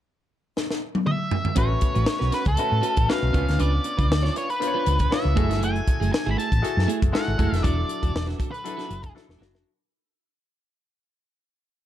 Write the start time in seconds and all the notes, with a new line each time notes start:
0.57 snare
0.71 snare
0.95 high tom
1.07 E5, mid tom
1.31 floor tom
1.45 floor tom
1.56 A1 A3 C#4 F#4 B4 C#5, kick, closed hi-hat
1.69 muted clean electric guitar stroke
1.81 muted clean electric guitar stroke, kick, closed hi-hat
1.95 A1 C#4 F#4 B4, closed hi-hat
2.06 snare
2.19 B1 C#4 F#4 B4, snare
2.31 C#4 F#4 B4, snare, closed hi-hat
2.45 C#2 A4, kick, closed hi-hat
2.57 A3 C#4 F#4 B4, muted clean electric guitar stroke, muted fingered electric bass stroke, closed hi-hat
2.70 A2, muted clean electric guitar stroke
2.82 C#4 F#4 B4, closed hi-hat
2.97 A1, muted clean electric guitar stroke, kick, closed hi-hat
3.08 A3 C#4 F#4 B4 F5, muted clean electric guitar stroke, snare
3.22 B1, muted clean electric guitar stroke
3.33 C#2 B3 C#4 D4 F4 B4, kick, closed hi-hat
3.47 D2, muted clean electric guitar stroke, snare, closed hi-hat
3.59 C#2 D4 F4 B4 D5, closed hi-hat
3.73 muted clean electric guitar stroke
3.84 muted clean electric guitar stroke, closed hi-hat
3.97 C#2 D4 F4 B4, kick, closed hi-hat
4.09 D2, muted clean electric guitar stroke, snare
4.23 D4 F4 C#5, snare
4.34 D4 F4 B4 C#5, closed hi-hat
4.49 B4, muted clean electric guitar stroke, closed hi-hat
4.60 B3 D4 F4 C5, muted clean electric guitar stroke, closed hi-hat
4.67 C#5
4.74 D4 F4 B4
4.86 C#2 D4 F4 B4, closed hi-hat
4.99 muted clean electric guitar stroke, kick, closed hi-hat
5.10 B3 D4 F4 C#5 E5, muted clean electric guitar stroke, snare
5.24 C#2, muted clean electric guitar stroke
5.35 F#1 A3 E4 F#4 G#4 A4, kick, closed hi-hat
5.50 G1 A3 E4 G#4, snare, closed hi-hat
5.60 F#1 A3 E4 G#4, closed hi-hat
5.64 G#5
5.75 muted clean electric guitar stroke, closed hi-hat
5.87 muted clean electric guitar stroke, kick, closed hi-hat
6.00 F#1 A3 E4 G#4, closed hi-hat
6.13 G#5, snare
6.26 G#1 A3 E4 G#4
6.31 B5
6.38 A3 E4 G#4 A5, closed hi-hat
6.52 A1, kick, closed hi-hat
6.62 E4 F#4 G#4 A4, muted fingered electric bass stroke, muted clean electric guitar stroke, closed hi-hat
6.77 F#2, muted clean electric guitar stroke, snare
6.88 A3 E4 G#4, closed hi-hat
7.01 F#1, muted clean electric guitar stroke, kick, closed hi-hat
7.12 G#3 E4 F#4 A4 F#5, muted clean electric guitar stroke, snare
7.27 G#1, muted clean electric guitar stroke
7.38 F#1 G#3 A3 E4 F#4 G#4 A4, kick, closed hi-hat
7.52 F1, muted clean electric guitar stroke, snare, closed hi-hat
7.63 E1 F#3 D4 E4 F#4 A4 D5, kick, closed hi-hat
7.78 muted clean electric guitar stroke
7.89 muted clean electric guitar stroke, closed hi-hat
8.02 E1 D4 F#4 A4, kick, closed hi-hat
8.14 E1, muted clean electric guitar stroke, snare
8.27 D4 F#4 B4, snare, closed hi-hat
8.38 D4 F#4 A4, kick, closed hi-hat
8.51 B4, closed hi-hat
8.64 F#3 D4 E4 A4, muted clean electric guitar stroke, closed hi-hat
8.77 D4 F#4 A4, snare, closed hi-hat
8.88 F#1 D4 F#4 A4, closed hi-hat
9.03 muted clean electric guitar stroke, kick, closed hi-hat
9.14 F#3 D4 E4 A4, muted clean electric guitar stroke, snare
9.28 E1, muted clean electric guitar stroke, snare
9.38 F#1 F#3 D4 E4 F#4 A4, snare
9.53 F1 D4 F#4 A4, snare